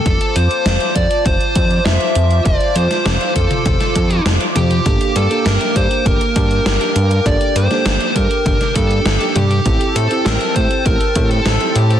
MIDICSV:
0, 0, Header, 1, 6, 480
1, 0, Start_track
1, 0, Tempo, 600000
1, 46, Time_signature, 4, 2, 24, 8
1, 9599, End_track
2, 0, Start_track
2, 0, Title_t, "Analog synth pad"
2, 0, Program_c, 0, 89
2, 0, Note_on_c, 0, 81, 76
2, 43, Note_on_c, 0, 86, 92
2, 44, Note_on_c, 0, 65, 78
2, 44, Note_on_c, 0, 72, 84
2, 3853, Note_off_c, 0, 65, 0
2, 3853, Note_off_c, 0, 72, 0
2, 3885, Note_on_c, 0, 79, 77
2, 3886, Note_on_c, 0, 58, 86
2, 5774, Note_off_c, 0, 81, 0
2, 7692, Note_off_c, 0, 86, 0
2, 7694, Note_off_c, 0, 58, 0
2, 7724, Note_on_c, 0, 81, 78
2, 7726, Note_on_c, 0, 72, 85
2, 7727, Note_on_c, 0, 88, 94
2, 9599, Note_off_c, 0, 72, 0
2, 9599, Note_off_c, 0, 79, 0
2, 9599, Note_off_c, 0, 81, 0
2, 9599, Note_off_c, 0, 88, 0
2, 9599, End_track
3, 0, Start_track
3, 0, Title_t, "Lead electric guitar"
3, 0, Program_c, 1, 29
3, 0, Note_on_c, 1, 69, 104
3, 287, Note_on_c, 1, 72, 100
3, 300, Note_off_c, 1, 69, 0
3, 764, Note_off_c, 1, 72, 0
3, 767, Note_on_c, 1, 74, 95
3, 990, Note_off_c, 1, 74, 0
3, 1007, Note_on_c, 1, 72, 101
3, 1482, Note_off_c, 1, 72, 0
3, 1485, Note_on_c, 1, 76, 108
3, 1933, Note_off_c, 1, 76, 0
3, 1966, Note_on_c, 1, 74, 98
3, 2204, Note_on_c, 1, 72, 104
3, 2213, Note_off_c, 1, 74, 0
3, 2653, Note_off_c, 1, 72, 0
3, 2686, Note_on_c, 1, 69, 85
3, 3374, Note_off_c, 1, 69, 0
3, 3652, Note_on_c, 1, 67, 94
3, 4132, Note_on_c, 1, 69, 96
3, 4143, Note_off_c, 1, 67, 0
3, 4369, Note_off_c, 1, 69, 0
3, 4373, Note_on_c, 1, 70, 99
3, 4609, Note_off_c, 1, 70, 0
3, 4612, Note_on_c, 1, 72, 98
3, 4850, Note_off_c, 1, 72, 0
3, 4854, Note_on_c, 1, 70, 98
3, 5321, Note_off_c, 1, 70, 0
3, 5331, Note_on_c, 1, 70, 105
3, 5811, Note_on_c, 1, 74, 106
3, 5822, Note_off_c, 1, 70, 0
3, 6050, Note_on_c, 1, 72, 108
3, 6055, Note_off_c, 1, 74, 0
3, 6522, Note_off_c, 1, 72, 0
3, 6526, Note_on_c, 1, 70, 96
3, 7002, Note_off_c, 1, 70, 0
3, 7005, Note_on_c, 1, 69, 95
3, 7485, Note_on_c, 1, 67, 96
3, 7499, Note_off_c, 1, 69, 0
3, 7968, Note_on_c, 1, 69, 90
3, 7979, Note_off_c, 1, 67, 0
3, 8203, Note_off_c, 1, 69, 0
3, 8207, Note_on_c, 1, 70, 93
3, 8443, Note_off_c, 1, 70, 0
3, 8446, Note_on_c, 1, 72, 95
3, 8686, Note_off_c, 1, 72, 0
3, 8689, Note_on_c, 1, 70, 97
3, 9022, Note_off_c, 1, 70, 0
3, 9048, Note_on_c, 1, 69, 93
3, 9406, Note_on_c, 1, 67, 83
3, 9418, Note_off_c, 1, 69, 0
3, 9599, Note_off_c, 1, 67, 0
3, 9599, End_track
4, 0, Start_track
4, 0, Title_t, "FM electric piano"
4, 0, Program_c, 2, 5
4, 3886, Note_on_c, 2, 58, 91
4, 3886, Note_on_c, 2, 62, 87
4, 3886, Note_on_c, 2, 67, 82
4, 3886, Note_on_c, 2, 69, 103
4, 4217, Note_off_c, 2, 58, 0
4, 4217, Note_off_c, 2, 62, 0
4, 4217, Note_off_c, 2, 67, 0
4, 4217, Note_off_c, 2, 69, 0
4, 4246, Note_on_c, 2, 62, 83
4, 4246, Note_on_c, 2, 67, 78
4, 4247, Note_on_c, 2, 58, 92
4, 4247, Note_on_c, 2, 69, 101
4, 4577, Note_off_c, 2, 58, 0
4, 4577, Note_off_c, 2, 62, 0
4, 4577, Note_off_c, 2, 67, 0
4, 4577, Note_off_c, 2, 69, 0
4, 4606, Note_on_c, 2, 58, 72
4, 4606, Note_on_c, 2, 67, 67
4, 4606, Note_on_c, 2, 69, 81
4, 4607, Note_on_c, 2, 62, 67
4, 4817, Note_off_c, 2, 58, 0
4, 4817, Note_off_c, 2, 62, 0
4, 4817, Note_off_c, 2, 67, 0
4, 4817, Note_off_c, 2, 69, 0
4, 4846, Note_on_c, 2, 62, 66
4, 4846, Note_on_c, 2, 69, 77
4, 4847, Note_on_c, 2, 58, 72
4, 4847, Note_on_c, 2, 67, 68
4, 4939, Note_off_c, 2, 58, 0
4, 4939, Note_off_c, 2, 62, 0
4, 4939, Note_off_c, 2, 69, 0
4, 4940, Note_off_c, 2, 67, 0
4, 5085, Note_on_c, 2, 58, 89
4, 5085, Note_on_c, 2, 81, 96
4, 5086, Note_on_c, 2, 62, 77
4, 5086, Note_on_c, 2, 67, 77
4, 5416, Note_off_c, 2, 58, 0
4, 5417, Note_off_c, 2, 62, 0
4, 5417, Note_off_c, 2, 67, 0
4, 5417, Note_off_c, 2, 81, 0
4, 5445, Note_on_c, 2, 58, 75
4, 5445, Note_on_c, 2, 62, 67
4, 5445, Note_on_c, 2, 67, 68
4, 5445, Note_on_c, 2, 81, 82
4, 5776, Note_off_c, 2, 62, 0
4, 5776, Note_off_c, 2, 67, 0
4, 5776, Note_off_c, 2, 81, 0
4, 5777, Note_off_c, 2, 58, 0
4, 5806, Note_on_c, 2, 58, 94
4, 5806, Note_on_c, 2, 67, 82
4, 5806, Note_on_c, 2, 69, 104
4, 5807, Note_on_c, 2, 62, 89
4, 6137, Note_off_c, 2, 58, 0
4, 6137, Note_off_c, 2, 62, 0
4, 6137, Note_off_c, 2, 67, 0
4, 6137, Note_off_c, 2, 69, 0
4, 6167, Note_on_c, 2, 67, 86
4, 6168, Note_on_c, 2, 58, 96
4, 6168, Note_on_c, 2, 62, 84
4, 6168, Note_on_c, 2, 69, 107
4, 6498, Note_off_c, 2, 58, 0
4, 6498, Note_off_c, 2, 62, 0
4, 6498, Note_off_c, 2, 67, 0
4, 6498, Note_off_c, 2, 69, 0
4, 6526, Note_on_c, 2, 62, 66
4, 6526, Note_on_c, 2, 67, 68
4, 6526, Note_on_c, 2, 69, 81
4, 6527, Note_on_c, 2, 58, 70
4, 6737, Note_off_c, 2, 58, 0
4, 6737, Note_off_c, 2, 62, 0
4, 6737, Note_off_c, 2, 67, 0
4, 6737, Note_off_c, 2, 69, 0
4, 6768, Note_on_c, 2, 58, 74
4, 6768, Note_on_c, 2, 62, 70
4, 6768, Note_on_c, 2, 67, 68
4, 6768, Note_on_c, 2, 69, 81
4, 6860, Note_off_c, 2, 58, 0
4, 6860, Note_off_c, 2, 62, 0
4, 6860, Note_off_c, 2, 67, 0
4, 6860, Note_off_c, 2, 69, 0
4, 7006, Note_on_c, 2, 58, 86
4, 7006, Note_on_c, 2, 62, 79
4, 7006, Note_on_c, 2, 67, 77
4, 7006, Note_on_c, 2, 69, 95
4, 7337, Note_off_c, 2, 58, 0
4, 7337, Note_off_c, 2, 62, 0
4, 7337, Note_off_c, 2, 67, 0
4, 7337, Note_off_c, 2, 69, 0
4, 7367, Note_on_c, 2, 58, 74
4, 7367, Note_on_c, 2, 62, 69
4, 7367, Note_on_c, 2, 67, 72
4, 7367, Note_on_c, 2, 69, 85
4, 7697, Note_off_c, 2, 58, 0
4, 7697, Note_off_c, 2, 62, 0
4, 7697, Note_off_c, 2, 67, 0
4, 7697, Note_off_c, 2, 69, 0
4, 7728, Note_on_c, 2, 60, 89
4, 7728, Note_on_c, 2, 64, 83
4, 7728, Note_on_c, 2, 67, 85
4, 7728, Note_on_c, 2, 69, 101
4, 8058, Note_off_c, 2, 60, 0
4, 8058, Note_off_c, 2, 64, 0
4, 8058, Note_off_c, 2, 67, 0
4, 8058, Note_off_c, 2, 69, 0
4, 8088, Note_on_c, 2, 64, 80
4, 8088, Note_on_c, 2, 67, 84
4, 8088, Note_on_c, 2, 69, 102
4, 8089, Note_on_c, 2, 60, 94
4, 8418, Note_off_c, 2, 60, 0
4, 8418, Note_off_c, 2, 64, 0
4, 8418, Note_off_c, 2, 67, 0
4, 8418, Note_off_c, 2, 69, 0
4, 8448, Note_on_c, 2, 60, 72
4, 8448, Note_on_c, 2, 64, 68
4, 8448, Note_on_c, 2, 69, 83
4, 8449, Note_on_c, 2, 67, 68
4, 8658, Note_off_c, 2, 60, 0
4, 8658, Note_off_c, 2, 64, 0
4, 8658, Note_off_c, 2, 67, 0
4, 8658, Note_off_c, 2, 69, 0
4, 8688, Note_on_c, 2, 67, 70
4, 8689, Note_on_c, 2, 60, 76
4, 8689, Note_on_c, 2, 64, 70
4, 8689, Note_on_c, 2, 69, 79
4, 8780, Note_off_c, 2, 67, 0
4, 8780, Note_off_c, 2, 69, 0
4, 8781, Note_off_c, 2, 60, 0
4, 8781, Note_off_c, 2, 64, 0
4, 8927, Note_on_c, 2, 60, 87
4, 8927, Note_on_c, 2, 64, 75
4, 8927, Note_on_c, 2, 69, 96
4, 8928, Note_on_c, 2, 67, 76
4, 9257, Note_off_c, 2, 60, 0
4, 9257, Note_off_c, 2, 69, 0
4, 9258, Note_off_c, 2, 64, 0
4, 9258, Note_off_c, 2, 67, 0
4, 9287, Note_on_c, 2, 60, 73
4, 9287, Note_on_c, 2, 64, 69
4, 9287, Note_on_c, 2, 67, 70
4, 9288, Note_on_c, 2, 69, 78
4, 9599, Note_off_c, 2, 60, 0
4, 9599, Note_off_c, 2, 64, 0
4, 9599, Note_off_c, 2, 67, 0
4, 9599, Note_off_c, 2, 69, 0
4, 9599, End_track
5, 0, Start_track
5, 0, Title_t, "Analog synth bass"
5, 0, Program_c, 3, 38
5, 46, Note_on_c, 3, 29, 98
5, 144, Note_off_c, 3, 29, 0
5, 287, Note_on_c, 3, 41, 86
5, 384, Note_off_c, 3, 41, 0
5, 525, Note_on_c, 3, 29, 105
5, 623, Note_off_c, 3, 29, 0
5, 766, Note_on_c, 3, 41, 78
5, 864, Note_off_c, 3, 41, 0
5, 1005, Note_on_c, 3, 29, 92
5, 1104, Note_off_c, 3, 29, 0
5, 1246, Note_on_c, 3, 41, 95
5, 1442, Note_off_c, 3, 41, 0
5, 1486, Note_on_c, 3, 29, 99
5, 1584, Note_off_c, 3, 29, 0
5, 1726, Note_on_c, 3, 41, 82
5, 1922, Note_off_c, 3, 41, 0
5, 1966, Note_on_c, 3, 29, 95
5, 2064, Note_off_c, 3, 29, 0
5, 2205, Note_on_c, 3, 41, 82
5, 2304, Note_off_c, 3, 41, 0
5, 2445, Note_on_c, 3, 29, 94
5, 2543, Note_off_c, 3, 29, 0
5, 2686, Note_on_c, 3, 41, 80
5, 2784, Note_off_c, 3, 41, 0
5, 2927, Note_on_c, 3, 29, 89
5, 3024, Note_off_c, 3, 29, 0
5, 3167, Note_on_c, 3, 41, 102
5, 3363, Note_off_c, 3, 41, 0
5, 3407, Note_on_c, 3, 29, 97
5, 3504, Note_off_c, 3, 29, 0
5, 3646, Note_on_c, 3, 41, 80
5, 3842, Note_off_c, 3, 41, 0
5, 3887, Note_on_c, 3, 31, 96
5, 3984, Note_off_c, 3, 31, 0
5, 4125, Note_on_c, 3, 43, 83
5, 4224, Note_off_c, 3, 43, 0
5, 4367, Note_on_c, 3, 31, 98
5, 4464, Note_off_c, 3, 31, 0
5, 4607, Note_on_c, 3, 43, 81
5, 4704, Note_off_c, 3, 43, 0
5, 4846, Note_on_c, 3, 31, 90
5, 4944, Note_off_c, 3, 31, 0
5, 5087, Note_on_c, 3, 43, 98
5, 5282, Note_off_c, 3, 43, 0
5, 5327, Note_on_c, 3, 31, 100
5, 5424, Note_off_c, 3, 31, 0
5, 5566, Note_on_c, 3, 43, 87
5, 5762, Note_off_c, 3, 43, 0
5, 5807, Note_on_c, 3, 31, 101
5, 5905, Note_off_c, 3, 31, 0
5, 6045, Note_on_c, 3, 43, 82
5, 6144, Note_off_c, 3, 43, 0
5, 6285, Note_on_c, 3, 31, 97
5, 6384, Note_off_c, 3, 31, 0
5, 6526, Note_on_c, 3, 43, 82
5, 6624, Note_off_c, 3, 43, 0
5, 6766, Note_on_c, 3, 31, 91
5, 6864, Note_off_c, 3, 31, 0
5, 7006, Note_on_c, 3, 43, 105
5, 7202, Note_off_c, 3, 43, 0
5, 7244, Note_on_c, 3, 31, 99
5, 7343, Note_off_c, 3, 31, 0
5, 7486, Note_on_c, 3, 43, 82
5, 7682, Note_off_c, 3, 43, 0
5, 7726, Note_on_c, 3, 33, 103
5, 7824, Note_off_c, 3, 33, 0
5, 7964, Note_on_c, 3, 45, 85
5, 8063, Note_off_c, 3, 45, 0
5, 8203, Note_on_c, 3, 33, 95
5, 8303, Note_off_c, 3, 33, 0
5, 8446, Note_on_c, 3, 45, 81
5, 8544, Note_off_c, 3, 45, 0
5, 8686, Note_on_c, 3, 33, 91
5, 8784, Note_off_c, 3, 33, 0
5, 8926, Note_on_c, 3, 45, 104
5, 9122, Note_off_c, 3, 45, 0
5, 9165, Note_on_c, 3, 33, 101
5, 9263, Note_off_c, 3, 33, 0
5, 9404, Note_on_c, 3, 45, 84
5, 9599, Note_off_c, 3, 45, 0
5, 9599, End_track
6, 0, Start_track
6, 0, Title_t, "Drums"
6, 46, Note_on_c, 9, 36, 120
6, 46, Note_on_c, 9, 42, 64
6, 126, Note_off_c, 9, 36, 0
6, 126, Note_off_c, 9, 42, 0
6, 166, Note_on_c, 9, 42, 38
6, 246, Note_off_c, 9, 42, 0
6, 286, Note_on_c, 9, 42, 89
6, 366, Note_off_c, 9, 42, 0
6, 406, Note_on_c, 9, 42, 39
6, 486, Note_off_c, 9, 42, 0
6, 526, Note_on_c, 9, 38, 126
6, 526, Note_on_c, 9, 42, 68
6, 606, Note_off_c, 9, 38, 0
6, 606, Note_off_c, 9, 42, 0
6, 644, Note_on_c, 9, 42, 37
6, 724, Note_off_c, 9, 42, 0
6, 765, Note_on_c, 9, 42, 88
6, 766, Note_on_c, 9, 36, 60
6, 845, Note_off_c, 9, 42, 0
6, 846, Note_off_c, 9, 36, 0
6, 886, Note_on_c, 9, 42, 38
6, 966, Note_off_c, 9, 42, 0
6, 1005, Note_on_c, 9, 42, 61
6, 1006, Note_on_c, 9, 36, 121
6, 1085, Note_off_c, 9, 42, 0
6, 1086, Note_off_c, 9, 36, 0
6, 1125, Note_on_c, 9, 42, 40
6, 1205, Note_off_c, 9, 42, 0
6, 1244, Note_on_c, 9, 42, 82
6, 1246, Note_on_c, 9, 36, 106
6, 1324, Note_off_c, 9, 42, 0
6, 1326, Note_off_c, 9, 36, 0
6, 1364, Note_on_c, 9, 42, 38
6, 1444, Note_off_c, 9, 42, 0
6, 1484, Note_on_c, 9, 38, 119
6, 1484, Note_on_c, 9, 42, 60
6, 1564, Note_off_c, 9, 38, 0
6, 1564, Note_off_c, 9, 42, 0
6, 1604, Note_on_c, 9, 42, 37
6, 1684, Note_off_c, 9, 42, 0
6, 1724, Note_on_c, 9, 42, 87
6, 1804, Note_off_c, 9, 42, 0
6, 1844, Note_on_c, 9, 42, 35
6, 1924, Note_off_c, 9, 42, 0
6, 1964, Note_on_c, 9, 42, 57
6, 1966, Note_on_c, 9, 36, 119
6, 2044, Note_off_c, 9, 42, 0
6, 2046, Note_off_c, 9, 36, 0
6, 2085, Note_on_c, 9, 42, 38
6, 2165, Note_off_c, 9, 42, 0
6, 2205, Note_on_c, 9, 42, 81
6, 2285, Note_off_c, 9, 42, 0
6, 2326, Note_on_c, 9, 38, 37
6, 2326, Note_on_c, 9, 42, 37
6, 2406, Note_off_c, 9, 38, 0
6, 2406, Note_off_c, 9, 42, 0
6, 2445, Note_on_c, 9, 38, 126
6, 2445, Note_on_c, 9, 42, 67
6, 2525, Note_off_c, 9, 38, 0
6, 2525, Note_off_c, 9, 42, 0
6, 2566, Note_on_c, 9, 42, 38
6, 2646, Note_off_c, 9, 42, 0
6, 2685, Note_on_c, 9, 42, 87
6, 2686, Note_on_c, 9, 36, 57
6, 2765, Note_off_c, 9, 42, 0
6, 2766, Note_off_c, 9, 36, 0
6, 2806, Note_on_c, 9, 42, 38
6, 2806, Note_on_c, 9, 47, 58
6, 2886, Note_off_c, 9, 42, 0
6, 2886, Note_off_c, 9, 47, 0
6, 2925, Note_on_c, 9, 42, 61
6, 2925, Note_on_c, 9, 47, 56
6, 2927, Note_on_c, 9, 36, 122
6, 3005, Note_off_c, 9, 42, 0
6, 3005, Note_off_c, 9, 47, 0
6, 3007, Note_off_c, 9, 36, 0
6, 3045, Note_on_c, 9, 38, 36
6, 3045, Note_on_c, 9, 42, 39
6, 3125, Note_off_c, 9, 38, 0
6, 3125, Note_off_c, 9, 42, 0
6, 3164, Note_on_c, 9, 42, 83
6, 3166, Note_on_c, 9, 36, 60
6, 3244, Note_off_c, 9, 42, 0
6, 3246, Note_off_c, 9, 36, 0
6, 3285, Note_on_c, 9, 42, 37
6, 3365, Note_off_c, 9, 42, 0
6, 3406, Note_on_c, 9, 38, 116
6, 3406, Note_on_c, 9, 42, 65
6, 3486, Note_off_c, 9, 38, 0
6, 3486, Note_off_c, 9, 42, 0
6, 3525, Note_on_c, 9, 42, 38
6, 3605, Note_off_c, 9, 42, 0
6, 3645, Note_on_c, 9, 42, 80
6, 3645, Note_on_c, 9, 47, 84
6, 3725, Note_off_c, 9, 42, 0
6, 3725, Note_off_c, 9, 47, 0
6, 3766, Note_on_c, 9, 42, 35
6, 3846, Note_off_c, 9, 42, 0
6, 3886, Note_on_c, 9, 42, 62
6, 3887, Note_on_c, 9, 36, 109
6, 3966, Note_off_c, 9, 42, 0
6, 3967, Note_off_c, 9, 36, 0
6, 4006, Note_on_c, 9, 42, 35
6, 4086, Note_off_c, 9, 42, 0
6, 4126, Note_on_c, 9, 42, 80
6, 4206, Note_off_c, 9, 42, 0
6, 4247, Note_on_c, 9, 42, 34
6, 4327, Note_off_c, 9, 42, 0
6, 4366, Note_on_c, 9, 38, 121
6, 4366, Note_on_c, 9, 42, 62
6, 4446, Note_off_c, 9, 38, 0
6, 4446, Note_off_c, 9, 42, 0
6, 4486, Note_on_c, 9, 42, 35
6, 4566, Note_off_c, 9, 42, 0
6, 4607, Note_on_c, 9, 36, 57
6, 4607, Note_on_c, 9, 42, 88
6, 4687, Note_off_c, 9, 36, 0
6, 4687, Note_off_c, 9, 42, 0
6, 4727, Note_on_c, 9, 42, 37
6, 4807, Note_off_c, 9, 42, 0
6, 4847, Note_on_c, 9, 36, 120
6, 4847, Note_on_c, 9, 42, 61
6, 4927, Note_off_c, 9, 36, 0
6, 4927, Note_off_c, 9, 42, 0
6, 4968, Note_on_c, 9, 42, 37
6, 5048, Note_off_c, 9, 42, 0
6, 5087, Note_on_c, 9, 36, 105
6, 5087, Note_on_c, 9, 42, 83
6, 5167, Note_off_c, 9, 36, 0
6, 5167, Note_off_c, 9, 42, 0
6, 5206, Note_on_c, 9, 42, 36
6, 5286, Note_off_c, 9, 42, 0
6, 5328, Note_on_c, 9, 38, 109
6, 5328, Note_on_c, 9, 42, 59
6, 5408, Note_off_c, 9, 38, 0
6, 5408, Note_off_c, 9, 42, 0
6, 5447, Note_on_c, 9, 42, 36
6, 5527, Note_off_c, 9, 42, 0
6, 5566, Note_on_c, 9, 42, 77
6, 5646, Note_off_c, 9, 42, 0
6, 5688, Note_on_c, 9, 42, 37
6, 5768, Note_off_c, 9, 42, 0
6, 5807, Note_on_c, 9, 36, 111
6, 5807, Note_on_c, 9, 42, 58
6, 5887, Note_off_c, 9, 36, 0
6, 5887, Note_off_c, 9, 42, 0
6, 5927, Note_on_c, 9, 42, 35
6, 6007, Note_off_c, 9, 42, 0
6, 6046, Note_on_c, 9, 42, 81
6, 6126, Note_off_c, 9, 42, 0
6, 6166, Note_on_c, 9, 38, 35
6, 6166, Note_on_c, 9, 42, 34
6, 6246, Note_off_c, 9, 38, 0
6, 6246, Note_off_c, 9, 42, 0
6, 6285, Note_on_c, 9, 38, 113
6, 6285, Note_on_c, 9, 42, 61
6, 6365, Note_off_c, 9, 38, 0
6, 6365, Note_off_c, 9, 42, 0
6, 6405, Note_on_c, 9, 42, 36
6, 6485, Note_off_c, 9, 42, 0
6, 6526, Note_on_c, 9, 36, 54
6, 6526, Note_on_c, 9, 42, 85
6, 6606, Note_off_c, 9, 36, 0
6, 6606, Note_off_c, 9, 42, 0
6, 6646, Note_on_c, 9, 42, 36
6, 6726, Note_off_c, 9, 42, 0
6, 6766, Note_on_c, 9, 36, 117
6, 6767, Note_on_c, 9, 42, 58
6, 6767, Note_on_c, 9, 47, 63
6, 6846, Note_off_c, 9, 36, 0
6, 6847, Note_off_c, 9, 42, 0
6, 6847, Note_off_c, 9, 47, 0
6, 6886, Note_on_c, 9, 38, 35
6, 6886, Note_on_c, 9, 42, 37
6, 6966, Note_off_c, 9, 38, 0
6, 6966, Note_off_c, 9, 42, 0
6, 7004, Note_on_c, 9, 42, 86
6, 7006, Note_on_c, 9, 36, 56
6, 7084, Note_off_c, 9, 42, 0
6, 7086, Note_off_c, 9, 36, 0
6, 7125, Note_on_c, 9, 42, 36
6, 7205, Note_off_c, 9, 42, 0
6, 7245, Note_on_c, 9, 38, 104
6, 7245, Note_on_c, 9, 42, 62
6, 7325, Note_off_c, 9, 38, 0
6, 7325, Note_off_c, 9, 42, 0
6, 7365, Note_on_c, 9, 42, 35
6, 7445, Note_off_c, 9, 42, 0
6, 7485, Note_on_c, 9, 42, 76
6, 7485, Note_on_c, 9, 47, 82
6, 7565, Note_off_c, 9, 42, 0
6, 7565, Note_off_c, 9, 47, 0
6, 7606, Note_on_c, 9, 42, 35
6, 7686, Note_off_c, 9, 42, 0
6, 7725, Note_on_c, 9, 42, 61
6, 7726, Note_on_c, 9, 36, 102
6, 7805, Note_off_c, 9, 42, 0
6, 7806, Note_off_c, 9, 36, 0
6, 7846, Note_on_c, 9, 42, 39
6, 7926, Note_off_c, 9, 42, 0
6, 7967, Note_on_c, 9, 42, 84
6, 8047, Note_off_c, 9, 42, 0
6, 8086, Note_on_c, 9, 42, 37
6, 8166, Note_off_c, 9, 42, 0
6, 8206, Note_on_c, 9, 38, 116
6, 8206, Note_on_c, 9, 42, 65
6, 8286, Note_off_c, 9, 38, 0
6, 8286, Note_off_c, 9, 42, 0
6, 8326, Note_on_c, 9, 42, 35
6, 8406, Note_off_c, 9, 42, 0
6, 8446, Note_on_c, 9, 36, 56
6, 8446, Note_on_c, 9, 42, 85
6, 8526, Note_off_c, 9, 36, 0
6, 8526, Note_off_c, 9, 42, 0
6, 8566, Note_on_c, 9, 42, 36
6, 8646, Note_off_c, 9, 42, 0
6, 8686, Note_on_c, 9, 36, 118
6, 8686, Note_on_c, 9, 42, 62
6, 8766, Note_off_c, 9, 36, 0
6, 8766, Note_off_c, 9, 42, 0
6, 8805, Note_on_c, 9, 42, 38
6, 8885, Note_off_c, 9, 42, 0
6, 8924, Note_on_c, 9, 42, 83
6, 8926, Note_on_c, 9, 36, 101
6, 9004, Note_off_c, 9, 42, 0
6, 9006, Note_off_c, 9, 36, 0
6, 9046, Note_on_c, 9, 42, 38
6, 9126, Note_off_c, 9, 42, 0
6, 9165, Note_on_c, 9, 38, 106
6, 9165, Note_on_c, 9, 42, 61
6, 9245, Note_off_c, 9, 38, 0
6, 9245, Note_off_c, 9, 42, 0
6, 9285, Note_on_c, 9, 42, 38
6, 9365, Note_off_c, 9, 42, 0
6, 9405, Note_on_c, 9, 42, 81
6, 9485, Note_off_c, 9, 42, 0
6, 9525, Note_on_c, 9, 42, 34
6, 9599, Note_off_c, 9, 42, 0
6, 9599, End_track
0, 0, End_of_file